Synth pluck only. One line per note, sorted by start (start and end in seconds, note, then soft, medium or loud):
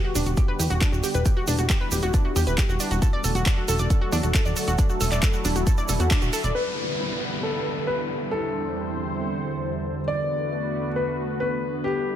0.04 0.12 F#4 medium
0.15 0.23 D4 loud
0.26 0.34 F#4 medium
0.37 0.42 G4 medium
0.48 0.56 B4 medium
0.59 0.64 G4 medium
0.70 0.78 F#4 loud
0.81 0.89 D4 loud
0.92 1.00 F#4 medium
1.03 1.08 G4 medium
1.15 1.22 B4 loud
1.26 1.30 G4 medium
1.37 1.44 F#4 loud
1.48 1.55 D4 medium
1.59 1.66 F#4 medium
1.70 1.74 G4 loud
1.81 1.88 B4 loud
1.92 1.96 G4 medium
2.03 2.10 F#4 loud
2.14 2.21 D4 medium
2.25 2.32 F#4 medium
2.36 2.40 G4 loud
2.47 2.54 B4 loud
2.58 2.62 G4 medium
2.69 2.76 F#4 loud
2.80 2.88 D4 loud
2.91 2.99 F#4 medium
3.02 3.07 A4 loud
3.13 3.21 D5 loud
3.24 3.29 A4 medium
3.35 3.43 F#4 loud
3.46 3.54 D4 loud
3.57 3.65 F#4 medium
3.68 3.73 A4 loud
3.79 3.87 D5 loud
3.90 3.95 A4 medium
4.01 4.09 F#4 medium
4.12 4.20 D4 loud
4.23 4.31 F#4 medium
4.35 4.39 A4 loud
4.45 4.53 D5 loud
4.57 4.61 A4 medium
4.68 4.75 F#4 loud
4.79 4.86 D4 loud
4.90 4.97 F#4 medium
5.01 5.05 A4 medium
5.12 5.19 D5 loud
5.23 5.27 A4 medium
5.34 5.41 F#4 loud
5.45 5.52 D4 loud
5.56 5.63 F#4 medium
5.67 5.71 A4 loud
5.78 5.85 D5 loud
5.89 5.93 A4 medium
6.00 6.07 F#4 medium
6.11 6.18 D4 loud
6.22 6.29 F#4 medium
6.33 6.37 A4 loud
6.44 6.52 D5 loud